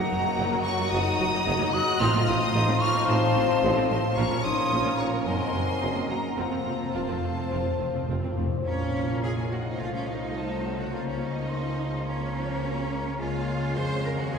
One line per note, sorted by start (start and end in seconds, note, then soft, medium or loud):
0.00 0.92 F#2 loud
0.00 1.05 F#3 medium
0.00 1.97 F#3 loud
0.00 0.60 A#3 loud
0.00 1.97 D#4 medium
0.00 0.11 F#4 medium
0.00 1.97 F#4 loud
0.00 0.24 D#5 medium
0.00 4.14 D#5 medium
0.00 0.37 F#5 medium
0.00 0.61 F#5 loud
0.00 0.60 A#5 loud
0.00 0.51 D#6 medium
0.11 0.16 F#1 medium
0.11 0.17 F#1 medium
0.11 0.16 F#2 medium
0.11 0.17 F#3 medium
0.11 1.18 F#4 medium
0.25 0.30 F#2 medium
0.25 0.30 F#3 medium
0.25 0.30 A#3 medium
0.25 0.78 D#5 medium
0.38 0.43 F#1 loud
0.38 0.44 F#1 loud
0.38 0.44 F#2 loud
0.38 0.44 F#3 loud
0.38 0.44 D#4 loud
0.38 0.65 F#5 medium
0.51 0.57 F#2 medium
0.51 0.57 F#3 medium
0.51 0.57 A#3 medium
0.51 1.59 D#6 medium
0.64 0.77 C#4 loud
0.64 1.45 F#5 medium
0.64 0.71 A#5 loud
0.64 0.92 C#6 loud
0.78 0.84 F#2 medium
0.78 0.84 F#3 medium
0.78 0.84 A#3 medium
0.78 1.32 D#5 medium
0.91 0.98 F#1 loud
0.91 0.98 F#2 loud
0.91 2.04 F#2 medium
0.91 0.98 F#3 loud
0.91 1.72 D#4 loud
0.91 0.98 D#4 loud
0.91 1.75 A#5 loud
0.91 1.73 D#6 loud
1.06 2.03 F#3 medium
1.19 1.25 F#1 medium
1.19 1.25 F#2 medium
1.19 1.25 F#3 medium
1.19 2.03 F#4 medium
1.33 1.38 F#2 medium
1.33 1.39 F#3 medium
1.33 1.39 A#3 medium
1.33 1.87 D#5 medium
1.46 1.52 F#1 loud
1.46 1.52 F#2 loud
1.46 1.52 F#3 loud
1.46 1.51 D#4 loud
1.46 1.72 F#5 medium
1.60 1.66 F#2 medium
1.60 1.65 F#3 medium
1.60 1.65 A#3 medium
1.60 2.67 D#6 medium
1.73 1.79 F#1 medium
1.73 1.79 F#2 medium
1.73 1.79 F#3 medium
1.73 2.00 F#4 loud
1.73 2.03 F#5 medium
1.73 1.99 D#6 loud
1.73 2.00 F#6 loud
1.88 2.40 D#5 medium
2.00 2.06 A1 loud
2.00 2.06 A2 loud
2.00 3.08 A2 medium
2.00 4.14 F3 loud
2.00 2.06 C4 loud
2.00 2.06 D#4 loud
2.00 4.14 D#4 loud
2.00 4.18 F4 medium
2.00 2.27 F4 loud
2.00 2.26 C6 loud
2.00 2.28 F6 loud
2.14 2.20 A2 medium
2.14 3.22 A3 medium
2.14 2.20 C4 medium
2.27 2.33 A1 medium
2.27 2.33 A2 medium
2.27 2.33 A3 medium
2.27 2.33 C4 medium
2.27 2.82 D#4 loud
2.27 2.82 C6 loud
2.27 2.82 D#6 loud
2.41 2.47 A2 medium
2.41 2.47 C4 medium
2.41 3.49 D#5 medium
2.54 2.60 A1 loud
2.54 2.60 A2 loud
2.54 2.60 C4 loud
2.54 2.60 D#4 loud
2.68 2.74 A2 medium
2.68 2.74 C4 medium
2.68 3.76 D#6 medium
2.81 3.09 F4 loud
2.81 3.10 C#6 loud
2.81 3.08 F6 loud
2.95 3.01 A2 medium
2.95 3.01 C4 medium
2.95 4.03 C5 medium
3.08 3.14 A1 loud
3.08 3.14 A2 loud
3.08 4.20 A2 medium
3.08 3.14 C4 loud
3.08 3.89 C4 loud
3.08 3.14 D#4 loud
3.08 3.89 A5 loud
3.08 3.88 C6 loud
3.23 4.20 A3 medium
3.35 3.42 A1 medium
3.35 3.41 A2 medium
3.35 3.41 A3 medium
3.35 3.41 C4 medium
3.50 3.55 A2 medium
3.50 3.55 C4 medium
3.50 4.20 D#5 medium
3.63 3.69 A1 loud
3.63 3.69 A2 loud
3.63 3.68 C4 medium
3.63 3.69 D#4 loud
3.63 3.90 F5 medium
3.76 3.82 A2 medium
3.76 3.82 C4 medium
3.76 4.20 D#6 medium
3.89 3.96 A1 medium
3.89 3.96 A2 medium
3.89 3.96 A3 medium
3.89 3.96 C4 medium
3.89 4.17 C4 medium
3.89 4.72 F5 medium
3.89 4.18 A5 medium
3.89 4.16 C6 loud
4.04 4.20 C5 medium
4.16 4.23 A#1 loud
4.16 4.23 A#1 medium
4.16 4.95 A#2 loud
4.16 4.23 A#2 loud
4.16 5.29 A#2 medium
4.16 5.28 F3 medium
4.16 4.23 A#3 loud
4.16 5.28 C#4 medium
4.16 4.45 C#4 loud
4.16 4.23 F4 loud
4.16 6.39 A#4 medium
4.16 5.24 C#5 medium
4.16 4.43 A#5 loud
4.16 4.44 C#6 loud
4.31 4.37 A#2 medium
4.31 5.29 F3 medium
4.31 4.36 A#3 medium
4.31 4.36 C#4 medium
4.44 4.50 A#1 medium
4.44 4.51 A#2 medium
4.44 4.50 A#3 medium
4.44 4.98 D#4 loud
4.44 5.29 F4 medium
4.44 5.00 C6 loud
4.44 4.99 D#6 loud
4.57 4.64 A#2 medium
4.57 4.63 A#3 medium
4.57 4.63 C#4 medium
4.57 5.29 C#5 medium
4.71 4.77 A#1 medium
4.71 4.78 A#1 loud
4.71 4.77 A#2 loud
4.71 4.77 A#3 medium
4.71 4.77 F4 loud
4.71 4.98 F5 medium
4.85 4.91 A#2 medium
4.85 4.91 A#3 medium
4.85 4.91 C#4 medium
4.98 5.11 C#4 medium
4.98 5.29 F5 medium
4.98 5.25 A#5 loud
4.98 5.06 C#6 medium
5.12 5.18 A#2 medium
5.12 5.18 A#3 medium
5.12 5.17 C#4 medium
5.25 5.32 F#1 medium
5.25 5.32 F#2 loud
5.25 6.41 F#2 medium
5.25 6.21 F#3 medium
5.25 5.31 A#3 medium
5.25 6.08 C4 loud
5.25 5.31 D#4 medium
5.25 5.66 D#4 medium
5.25 6.38 D#5 medium
5.25 6.08 G#5 loud
5.25 6.08 C6 loud
5.40 6.41 F#3 medium
5.53 5.59 F#1 medium
5.53 5.60 F#1 medium
5.53 5.59 F#2 medium
5.53 5.59 F#3 medium
5.53 5.59 A#3 medium
5.53 6.41 D#4 medium
5.66 5.73 F#2 medium
5.66 5.72 A#3 medium
5.66 6.08 D#5 medium
5.80 5.87 F#1 medium
5.80 5.88 F#1 medium
5.80 5.87 F#2 medium
5.80 5.86 A#3 medium
5.80 6.38 C#4 medium
5.80 5.86 D#4 medium
5.95 6.01 F#2 medium
5.95 6.01 A#3 medium
5.95 6.41 D#6 medium
6.09 6.16 F#1 medium
6.09 6.15 F#2 medium
6.09 6.15 F#3 medium
6.09 6.36 A#3 medium
6.09 6.15 A#3 medium
6.09 6.41 D#5 medium
6.09 6.38 F#5 medium
6.09 6.37 A#5 loud
6.24 6.41 A#4 medium
6.37 6.45 F1 medium
6.37 6.43 F2 medium
6.37 7.51 F2 medium
6.37 6.94 F3 medium
6.37 6.94 A#3 medium
6.37 6.44 C4 medium
6.37 6.95 C4 medium
6.37 6.44 F4 medium
6.37 8.46 F4 medium
6.37 8.42 C5 medium
6.37 6.75 F#5 medium
6.37 6.95 A#5 loud
6.51 6.58 F2 medium
6.51 7.65 C3 medium
6.51 6.58 C4 medium
6.61 6.67 F2 soft
6.66 6.73 F1 medium
6.66 6.72 F2 medium
6.66 6.75 F2 soft
6.66 6.72 A3 soft
6.66 6.72 C4 soft
6.66 7.79 F4 medium
6.76 6.83 F2 soft
6.76 6.86 C4 medium
6.81 6.86 F2 medium
6.81 6.90 F2 soft
6.81 7.37 C5 medium
6.92 7.01 F1 medium
6.92 6.97 F2 medium
6.92 7.01 F2 medium
6.92 8.35 F3 medium
6.92 8.09 A3 medium
6.92 7.00 C4 loud
6.92 8.35 C4 medium
6.92 7.00 F4 medium
6.92 7.23 F5 medium
6.92 8.09 A5 medium
6.96 7.02 F1 medium
6.96 7.05 F2 medium
6.96 8.06 F5 medium
7.06 7.12 F2 medium
7.06 7.15 F2 medium
7.06 7.15 C4 medium
7.06 8.23 C6 medium
7.13 7.20 F2 medium
7.21 7.27 F2 medium
7.21 8.08 F5 medium
7.28 7.34 F2 medium
7.35 7.42 F2 medium
7.35 7.44 F2 medium
7.35 7.43 C4 medium
7.35 7.94 C5 medium
7.43 7.48 F2 medium
7.50 7.58 F1 medium
7.50 7.56 F2 medium
7.50 8.69 F2 medium
7.50 7.58 F2 medium
7.50 7.57 C4 medium
7.50 7.57 F4 medium
7.58 7.64 F2 medium
7.66 7.72 F2 medium
7.66 8.69 C3 medium
7.73 7.79 F2 medium
7.79 7.87 F1 medium
7.79 7.86 F2 medium
7.79 7.87 F2 medium
7.79 7.86 A3 medium
7.79 7.86 C4 medium
7.79 8.56 F4 medium
7.88 7.94 F2 medium
7.94 8.02 F2 medium
7.94 8.01 F2 medium
7.94 8.01 C4 medium
7.94 8.50 C5 medium
8.03 8.10 F2 medium
8.09 8.15 F1 medium
8.09 8.16 F1 medium
8.09 8.15 F2 medium
8.09 8.18 F2 loud
8.09 8.15 C4 medium
8.09 8.15 F4 medium
8.09 8.37 F5 medium
8.19 8.25 F2 loud
8.19 8.29 C4 medium
8.24 8.29 F2 medium
8.24 8.32 F2 loud
8.24 8.69 C6 medium
8.33 8.40 F2 loud
8.33 8.43 C4 medium
8.37 8.44 F1 medium
8.37 8.44 F2 medium
8.37 8.43 A3 medium
8.37 12.28 F5 medium
8.42 8.48 F2 loud
8.48 8.56 F2 loud
8.48 9.73 A#2 medium
8.48 8.69 C5 medium
8.53 8.64 F2 loud
8.53 9.75 C#4 soft
8.57 9.70 F4 soft
8.62 9.80 A#4 soft
8.66 9.76 A#1 medium
8.66 9.25 F3 medium
8.66 9.76 A#3 medium
8.66 9.20 C#4 medium
8.66 9.76 F4 medium
8.66 9.19 C#5 medium
8.66 9.20 C#5 medium
8.66 9.82 C#5 medium
8.66 9.26 A#5 medium
9.23 9.81 D#3 medium
9.23 9.31 G#4 medium
9.23 10.38 F5 medium
9.23 9.51 G#5 medium
9.23 9.52 G#5 medium
9.51 9.57 F#4 medium
9.51 9.57 F#5 medium
9.51 9.66 F#5 medium
9.62 10.87 C3 medium
9.62 9.80 D#5 medium
9.66 10.89 C4 soft
9.66 9.80 D#4 medium
9.66 9.81 D#5 medium
9.71 10.84 F4 soft
9.75 9.94 F4 medium
9.75 10.94 A4 soft
9.79 10.94 C2 medium
9.79 10.37 F3 medium
9.79 10.94 A3 medium
9.79 10.33 A3 medium
9.79 10.91 F4 medium
9.79 11.50 C5 medium
9.79 9.94 F5 medium
9.93 10.08 C#4 medium
9.93 10.08 C#5 medium
10.07 10.79 D#4 medium
10.07 10.78 D#5 medium
10.37 10.50 F3 medium
10.37 10.66 C4 medium
10.37 10.92 A5 medium
10.65 10.78 F#3 medium
10.65 10.94 A3 medium
10.76 13.00 C#3 medium
10.76 10.93 F#5 medium
10.76 10.94 F#5 medium
10.80 13.15 A#3 soft
10.80 10.94 F#4 medium
10.85 14.30 F4 soft
10.90 12.60 F3 medium
10.90 11.08 F4 medium
10.90 13.20 A#4 soft
10.90 11.08 F5 medium
10.90 10.99 F5 medium
10.90 11.51 A#5 medium
10.94 13.16 C#2 medium
10.94 12.06 A#3 medium
10.94 11.49 A#3 medium
10.94 12.06 C#4 medium
11.08 11.22 C#4 medium
11.08 11.22 C#5 medium
11.08 11.14 C#5 medium
11.21 12.07 D#4 medium
11.21 12.05 D#5 medium
11.21 12.06 D#5 medium
11.49 11.63 A#3 medium
11.49 11.82 C5 medium
11.49 12.08 C6 medium
11.80 12.07 G#3 medium
11.80 12.10 A#4 medium
12.06 12.20 A#3 medium
12.06 13.17 A#3 medium
12.06 13.17 C#4 medium
12.06 13.19 C#5 medium
12.06 12.39 C#5 medium
12.06 13.21 A#5 medium
12.35 12.63 F3 medium
12.35 12.67 C5 medium
12.63 12.93 F3 medium
12.63 12.90 F#3 medium
12.63 13.20 A#4 medium
12.90 13.03 G#3 medium
12.90 13.21 A#3 medium
13.01 14.25 C#3 medium
13.06 14.18 G#3 medium
13.10 14.23 G#4 soft
13.15 13.74 A#3 medium
13.15 14.32 C#5 soft
13.19 13.75 C#2 medium
13.19 14.34 G#3 medium
13.19 14.30 G#3 medium
13.19 14.30 C#4 medium
13.19 13.75 F4 medium
13.19 13.76 C#5 medium
13.19 13.75 F5 medium
13.19 13.46 G#5 medium
13.47 13.77 G#5 medium
13.76 14.32 F2 medium
13.76 14.31 G#3 medium
13.76 14.05 C5 medium
13.76 14.32 C#5 medium
13.76 14.38 F5 medium
13.76 14.04 C6 medium
14.03 14.19 A#4 medium
14.03 14.18 A#5 medium
14.15 14.38 D#3 medium
14.15 14.32 F#5 medium
14.19 14.38 G#3 soft
14.19 14.33 F#4 medium
14.19 14.33 F#5 medium
14.24 14.38 G#4 soft
14.28 14.38 C5 soft
14.28 14.38 G#5 medium
14.32 14.38 D#2 medium
14.32 14.38 F#3 medium
14.32 14.38 G#3 medium
14.32 14.38 C4 medium
14.32 14.38 G#4 medium
14.32 14.38 D#5 medium
14.32 14.38 G#5 medium